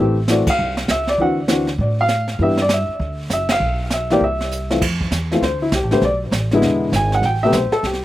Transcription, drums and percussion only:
0.28 snare, hi-hat pedal
0.47 kick, ride
0.58 brush sweep
0.77 snare
0.88 snare, hi-hat pedal
1.07 snare
1.18 brush sweep, kick
1.48 snare, hi-hat pedal
1.67 snare
1.78 brush sweep, kick
2.08 snare, hi-hat pedal
2.28 snare
2.39 brush sweep, kick
2.57 snare
2.69 snare, hi-hat pedal
3.00 brush sweep, kick
3.30 snare, hi-hat pedal
3.49 snare, ride
3.60 brush sweep
3.90 snare, hi-hat pedal
4.10 snare
4.21 brush sweep, kick
4.41 snare
4.51 hi-hat pedal
4.71 snare
4.82 brush sweep, kick, snare, crash
5.01 kick
5.11 kick, snare, hi-hat pedal
5.32 snare
5.42 brush sweep, kick, snare
5.72 kick, snare, hi-hat pedal
5.91 snare
6.02 brush sweep, kick, snare
6.32 kick, snare, hi-hat pedal
6.51 snare
6.62 brush sweep, kick, snare
6.92 kick, snare, hi-hat pedal
7.12 snare
7.22 brush sweep, kick, snare
7.53 kick, snare, hi-hat pedal
7.72 snare
7.83 brush sweep, kick, snare
7.93 snare

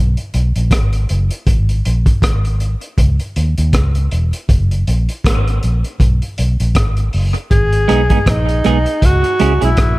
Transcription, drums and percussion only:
0.17 closed hi-hat
0.34 closed hi-hat
0.56 closed hi-hat
0.71 kick, cross-stick, closed hi-hat
0.93 closed hi-hat
1.09 closed hi-hat
1.31 closed hi-hat
1.47 kick, closed hi-hat
1.69 closed hi-hat
1.85 closed hi-hat
2.06 kick, closed hi-hat
2.22 kick, cross-stick, closed hi-hat
2.45 closed hi-hat
2.60 closed hi-hat
2.81 closed hi-hat
2.98 kick, closed hi-hat
3.20 closed hi-hat
3.36 closed hi-hat
3.58 closed hi-hat
3.73 kick, cross-stick, closed hi-hat
3.95 closed hi-hat
4.11 closed hi-hat
4.33 closed hi-hat
4.49 kick, closed hi-hat
4.71 closed hi-hat
4.87 closed hi-hat
5.09 closed hi-hat
5.24 kick, cross-stick, closed hi-hat
5.48 closed hi-hat
5.63 closed hi-hat
5.84 closed hi-hat
6.00 kick, closed hi-hat
6.22 closed hi-hat
6.38 closed hi-hat
6.60 closed hi-hat
6.75 kick, cross-stick, closed hi-hat
6.97 closed hi-hat
7.13 open hi-hat
7.34 closed hi-hat
7.51 kick, closed hi-hat
7.73 closed hi-hat
7.89 cross-stick, closed hi-hat
8.10 kick, closed hi-hat
8.26 kick, cross-stick, closed hi-hat
8.49 closed hi-hat
8.64 cross-stick, closed hi-hat
8.86 closed hi-hat
9.02 kick, closed hi-hat
9.24 closed hi-hat
9.40 closed hi-hat
9.62 closed hi-hat
9.77 kick, cross-stick, closed hi-hat

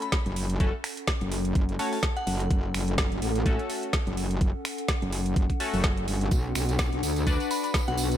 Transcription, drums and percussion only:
0.02 closed hi-hat
0.12 kick, snare, closed hi-hat
0.26 closed hi-hat
0.36 open hi-hat
0.50 closed hi-hat
0.60 kick, closed hi-hat
0.84 finger snap, open hi-hat
0.97 closed hi-hat
1.07 finger snap, kick, snare, closed hi-hat
1.21 closed hi-hat
1.32 open hi-hat
1.45 closed hi-hat
1.55 kick, closed hi-hat
1.69 closed hi-hat
1.79 open hi-hat
1.93 open hi-hat
2.03 kick, snare, closed hi-hat
2.17 closed hi-hat
2.27 open hi-hat
2.40 closed hi-hat
2.51 kick, closed hi-hat
2.74 finger snap, open hi-hat
2.88 closed hi-hat
2.98 finger snap, kick, snare, closed hi-hat
3.12 closed hi-hat
3.22 open hi-hat
3.36 closed hi-hat
3.46 kick, closed hi-hat
3.59 closed hi-hat
3.70 open hi-hat
3.83 closed hi-hat
3.93 kick, snare, closed hi-hat
4.07 closed hi-hat
4.17 open hi-hat
4.31 closed hi-hat
4.41 kick, closed hi-hat
4.65 finger snap, open hi-hat
4.78 closed hi-hat
4.88 finger snap, kick, snare, closed hi-hat
5.02 closed hi-hat
5.13 open hi-hat
5.26 closed hi-hat
5.36 kick, closed hi-hat
5.50 kick, closed hi-hat
5.60 open hi-hat
5.74 open hi-hat
5.84 kick, snare, closed hi-hat
5.97 closed hi-hat
6.08 open hi-hat
6.21 closed hi-hat
6.31 kick, closed hi-hat, tambourine
6.55 finger snap, open hi-hat, tambourine
6.69 closed hi-hat, tambourine
6.79 finger snap, kick, snare, closed hi-hat, tambourine
6.93 closed hi-hat
7.03 open hi-hat, tambourine
7.16 closed hi-hat, tambourine
7.27 kick, closed hi-hat, tambourine
7.40 closed hi-hat, tambourine
7.51 open hi-hat, tambourine
7.64 closed hi-hat, tambourine
7.74 kick, snare, closed hi-hat, tambourine
7.88 closed hi-hat
7.97 open hi-hat, tambourine
8.12 closed hi-hat, tambourine

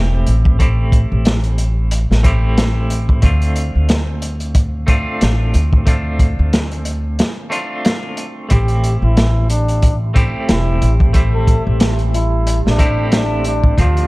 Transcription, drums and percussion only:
0.27 closed hi-hat
0.45 kick
0.60 kick, closed hi-hat
0.92 kick, closed hi-hat
1.25 snare, closed hi-hat
1.44 closed hi-hat
1.58 closed hi-hat
1.91 closed hi-hat
2.12 snare
2.24 kick, closed hi-hat
2.58 snare, closed hi-hat
2.90 closed hi-hat
3.09 kick
3.22 kick, closed hi-hat
3.42 closed hi-hat
3.56 closed hi-hat
3.89 snare, closed hi-hat
4.22 closed hi-hat
4.40 closed hi-hat
4.55 kick, closed hi-hat
4.88 kick, closed hi-hat
5.21 snare, closed hi-hat
5.54 closed hi-hat
5.73 kick
5.87 kick, closed hi-hat
6.19 kick, closed hi-hat
6.53 snare, closed hi-hat
6.71 closed hi-hat
6.85 closed hi-hat
7.19 snare, closed hi-hat
7.52 closed hi-hat
7.85 snare, closed hi-hat
8.17 closed hi-hat
8.50 kick, closed hi-hat
8.68 closed hi-hat
8.84 closed hi-hat
9.17 snare, closed hi-hat
9.50 closed hi-hat
9.68 closed hi-hat
9.82 kick, closed hi-hat
10.16 kick, closed hi-hat
10.49 snare, closed hi-hat
10.82 closed hi-hat
11.00 kick
11.14 kick, closed hi-hat
11.47 kick, closed hi-hat
11.80 snare, closed hi-hat
11.99 closed hi-hat
12.14 closed hi-hat
12.47 closed hi-hat
12.67 snare
12.79 kick, closed hi-hat
13.12 snare, closed hi-hat
13.44 closed hi-hat
13.64 kick
13.78 kick, closed hi-hat
13.97 closed hi-hat

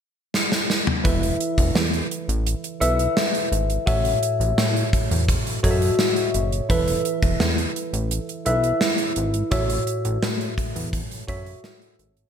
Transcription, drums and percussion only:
0.34 snare
0.52 snare
0.70 snare
0.87 mid tom
1.05 kick, closed hi-hat
1.23 closed hi-hat
1.40 closed hi-hat
1.58 kick, closed hi-hat
1.75 snare
1.93 closed hi-hat
2.11 closed hi-hat
2.29 closed hi-hat
2.47 closed hi-hat
2.64 closed hi-hat
2.82 closed hi-hat
2.99 closed hi-hat
3.17 snare
3.35 closed hi-hat
3.52 closed hi-hat
3.70 closed hi-hat
3.87 kick, closed hi-hat
4.05 closed hi-hat
4.23 closed hi-hat
4.41 closed hi-hat
4.58 snare
4.77 closed hi-hat
4.93 kick, closed hi-hat
5.11 closed hi-hat
5.28 kick, closed hi-hat
5.47 closed hi-hat
5.64 kick, closed hi-hat
5.82 closed hi-hat
5.99 snare
6.16 closed hi-hat
6.34 closed hi-hat
6.52 closed hi-hat
6.70 kick, closed hi-hat
6.88 closed hi-hat
7.05 closed hi-hat
7.23 kick, closed hi-hat
7.40 snare
7.58 closed hi-hat
7.76 closed hi-hat
7.94 closed hi-hat
8.11 closed hi-hat
8.29 closed hi-hat
8.46 closed hi-hat
8.64 closed hi-hat
8.81 snare
8.98 closed hi-hat
9.16 closed hi-hat
9.34 closed hi-hat
9.51 kick, closed hi-hat
9.70 closed hi-hat
9.87 closed hi-hat
10.05 closed hi-hat
10.23 snare
10.41 closed hi-hat
10.58 kick, closed hi-hat
10.76 closed hi-hat
10.93 kick, closed hi-hat
11.11 closed hi-hat
11.28 kick, closed hi-hat
11.46 closed hi-hat
11.64 snare
11.82 closed hi-hat
11.99 closed hi-hat
12.17 closed hi-hat

